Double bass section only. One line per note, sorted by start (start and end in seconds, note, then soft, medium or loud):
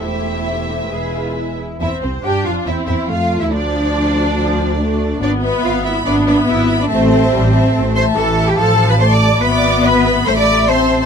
0.01 0.90 E1 soft
0.91 1.58 E1 soft
1.80 1.88 E2 medium
2.02 2.24 C2 medium
2.24 2.45 G2 medium
2.45 2.53 F2 medium
2.66 2.74 E2 medium
2.87 2.95 E2 medium
3.09 3.40 F2 medium
3.40 3.52 E2 medium
3.52 5.22 D2 medium
5.21 5.59 G#1 medium
5.63 6.00 G#1 medium
6.06 6.43 G#1 medium
6.48 6.85 G#1 medium
6.90 7.27 A1 medium
7.32 7.69 A1 medium
7.74 8.11 A1 medium
8.15 8.52 A1 medium
8.57 9.38 A1 medium
9.42 10.27 G#1 medium
10.27 11.06 A1 medium